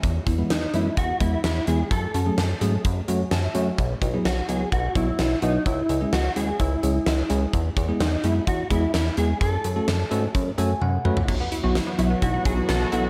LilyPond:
<<
  \new Staff \with { instrumentName = "Clean electric guitar" } { \time 4/4 \key b \mixolydian \tempo 4 = 128 r4 dis'8 e'8 fis'8 e'8 e'8 gis'8 | a'2 r2 | r4 fis'8 gis'8 fis'8 e'4 dis'8 | e'4 fis'8 gis'8 e'4. r8 |
r4 dis'8 e'8 fis'8 e'8 e'8 gis'8 | a'2 r2 | r4. e'8 fis'8 gis'8 a'8 fis'8 | }
  \new Staff \with { instrumentName = "Synth arpeggio sound" } { \time 4/4 \key b \mixolydian r1 | r1 | r1 | r1 |
r1 | r1 | fis16 b16 e'16 fis'16 e'16 b16 fis16 b16 e'16 fis'16 e'16 r16 fis16 b16 e'16 fis'16 | }
  \new Staff \with { instrumentName = "Tine electric piano" } { \time 4/4 \key b \mixolydian << { r1 | r2. a''16 e''8. | r1 | r1 |
r1 | r2 r8 gis''8 fis''4 | r1 | } \\ { r8 <b e'>16 <e gis b e'>16 r8 <e gis b e'>16 r8. <e gis b e'>16 r8. <e gis b e'>16 r16 | r8 <cis' fis'>16 <fis a cis' gis'>16 r8 <fis a cis' gis'>16 r8. <fis a cis' fis'>16 r8. <fis a cis' fis'>16 r16 | r8 <e' fis'>16 <fis b e' gis'>16 r8 <fis b e' fis'>16 r8. <fis b e' fis'>16 r8. <fis b e' fis'>16 r16 | r8 <e' gis'>16 <gis cis' e' gis'>16 r8 <gis cis' e' gis'>16 r8. <gis cis' e' gis'>16 r8. <gis cis' e' gis'>16 r16 |
r8 <e' gis'>16 <gis b e' gis'>16 r8 <gis b e' gis'>16 r8. <gis b e' gis'>16 r8. <gis b e' gis'>16 r16 | r8 <fis' a'>16 <a cis' fis' a'>16 r8 <a cis' fis' a'>16 r8. <a cis' fis' a'>16 r8. <a cis' fis' b'>16 r16 | r8 <e' fis'>16 <fis b e' fis'>16 r8 <fis b e' fis'>16 r8. <e' fis'>16 <fis b e' fis'>16 r8 <fis b e' a'>16 r16 | } >> }
  \new Staff \with { instrumentName = "Analog synth pad" } { \clef bass \time 4/4 \key b \mixolydian r1 | r1 | r1 | r1 |
r1 | r1 | <e fis b fis'>1 | }
  \new Staff \with { instrumentName = "Analog synth bass" } { \clef bass \time 4/4 \key b \mixolydian e,8 e,8 e,8 fis,8 e,8 e,8 e,8 e,8 | fis,8 fis,8 fis,8 gis,8 fis,8 fis,8 fis,8 fis,8 | b,,8 b,,8 b,,8 cis,8 b,,8 b,,8 b,,8 b,,8 | cis,8 cis,8 cis,8 dis,8 cis,8 cis,8 cis,8 cis,8 |
e,8 e,8 e,8 fis,8 e,8 e,8 e,8 e,8 | fis,8 fis,8 fis,8 gis,8 fis,8 fis,8 fis,8 fis,8 | b,,8 r16 b,,8 r16 b,,8 b,,8 b,,8 b,,8 b,,8 | }
  \new DrumStaff \with { instrumentName = "Drums" } \drummode { \time 4/4 <hh bd>8 <hh bd>8 <hh sn>8 hh8 <hh bd>8 <hh bd>8 <hh sn>8 hh8 | <hh bd>8 hh8 <hh sn>8 hh8 <hh bd>8 hh8 <hh sn>8 hh8 | <hh bd>8 <hh bd>8 <hh sn>8 hh8 <hh bd>8 <hh bd>8 <hh sn>8 hh8 | <hh bd>8 hh8 <hh sn>8 hh8 <hh bd>8 hh8 <hh sn>8 hh8 |
<hh bd>8 <hh bd>8 <hh sn>8 hh8 <hh bd>8 <hh bd>8 <hh sn>8 hh8 | <hh bd>8 hh8 <hh sn>8 hh8 <hh bd>8 hh8 tommh8 toml16 tomfh16 | <cymc bd>8 hh8 <hh sn>8 hh8 <hh bd>8 <hh bd>8 <hh sn>8 hh8 | }
>>